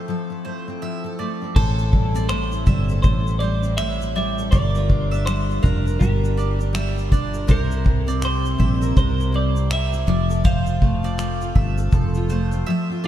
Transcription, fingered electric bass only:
1.56 2.63 A1 medium
2.67 3.01 G1 medium
3.04 4.48 A1 medium
4.53 5.60 G1 loud
5.64 5.98 F1 medium
6.01 7.45 G1 medium
7.49 8.56 C2 loud
8.60 8.94 A#1 medium
8.97 10.04 C2 medium
10.08 11.52 F1 medium
11.55 11.90 G1 medium
11.93 12.63 F1 medium

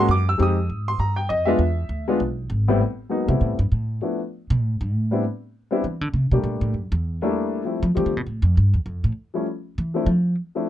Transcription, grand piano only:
0.11 0.28 D6 loud
0.29 0.39 E6 loud
0.38 0.55 G#3 medium
0.38 0.55 C4 medium
0.38 0.55 D#4 medium
0.38 0.56 G4 medium
0.43 0.86 D#6 loud
0.88 0.99 C6 loud
1.00 1.17 A#5 medium
1.16 1.28 G5 medium
1.29 1.47 D#5 loud
1.45 1.58 G#3 medium
1.45 1.58 B3 medium
1.45 1.58 D4 medium
1.45 1.59 F4 loud
1.45 2.15 E5 loud
2.08 2.19 G#3 medium
2.08 2.19 B3 medium
2.08 2.19 D4 medium
2.08 2.19 F4 medium
2.68 2.79 A2 medium
2.68 2.79 G3 medium
2.68 2.79 B3 medium
2.68 2.80 C4 medium
2.68 2.80 E4 medium
3.09 3.27 F#3 medium
3.09 3.27 G#3 medium
3.09 3.27 A#3 medium
3.09 3.27 B3 medium
3.09 3.28 D#4 medium
3.28 3.55 G3 medium
3.28 3.55 A3 soft
3.28 3.55 B3 medium
3.28 3.56 C4 soft
3.28 3.56 E4 medium
4.02 4.18 F3 medium
4.02 4.18 A3 soft
4.02 4.19 B3 soft
4.02 4.19 D4 soft
4.02 4.19 E4 medium
5.11 5.22 G3 medium
5.11 5.22 B3 medium
5.11 5.22 C4 medium
5.11 5.22 D4 medium
5.11 5.22 E4 medium
5.71 5.82 G3 medium
5.71 5.82 B3 medium
5.71 5.82 C4 medium
5.71 5.82 D4 medium
5.71 5.82 E4 medium
6.32 6.71 G3 medium
6.32 6.72 A3 medium
6.32 6.72 A#3 medium
6.32 6.72 D4 soft
6.32 6.72 G4 medium
7.22 7.62 G3 medium
7.22 7.62 A3 medium
7.22 7.62 A#3 medium
7.22 7.62 D4 medium
7.22 7.62 E4 medium
7.65 7.81 F3 medium
7.65 7.81 G3 soft
7.65 7.81 A3 soft
7.65 7.82 C4 soft
7.65 7.82 E4 medium
7.95 8.11 F3 medium
7.95 8.12 G3 medium
7.95 8.12 A3 medium
7.95 8.12 C4 medium
7.95 8.12 G4 medium
9.34 9.44 F3 medium
9.34 9.45 G3 medium
9.34 9.45 A3 medium
9.34 9.45 C#4 medium
9.34 9.45 E4 medium
9.94 10.05 F3 medium
9.94 10.05 A3 medium
9.94 10.05 C4 medium
9.94 10.06 D4 medium
9.94 10.06 E4 medium
10.55 10.65 F3 medium
10.55 10.66 A3 medium
10.55 10.66 C4 medium
10.55 10.66 D4 medium
10.55 10.66 E4 medium

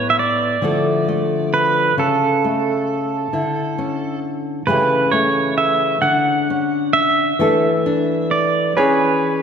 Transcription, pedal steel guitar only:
0.10 0.16 E5 medium
0.19 1.50 D5 medium
1.54 1.95 B4 medium
1.99 4.19 A4 medium
4.67 5.13 B4 medium
5.12 5.54 C#5 medium
5.58 5.99 E5 medium
6.02 6.89 F#5 medium
6.93 8.34 E5 medium
8.31 8.73 D5 medium
8.77 9.42 B4 medium

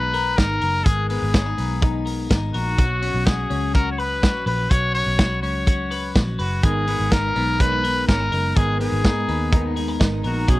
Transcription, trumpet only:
0.00 0.38 B4 loud
0.37 0.86 A#4 medium
0.85 1.08 G#4 loud
1.09 2.02 G#4 medium
2.54 3.27 F#4 medium
3.26 3.74 G#4 medium
3.74 3.90 A#4 medium
3.92 4.01 C#5 medium
3.99 4.47 B4 loud
4.47 4.72 B4 medium
4.71 4.94 C#5 loud
4.94 5.39 C#5 loud
5.42 6.11 C#5 medium
6.39 6.65 F#4 medium
6.64 7.14 G#4 medium
7.12 7.62 A#4 loud
7.60 8.08 B4 loud
8.08 8.58 A#4 medium
8.56 8.80 G#4 loud
8.81 9.73 G#4 medium
10.26 10.51 F#4 medium
10.49 10.60 G#4 medium

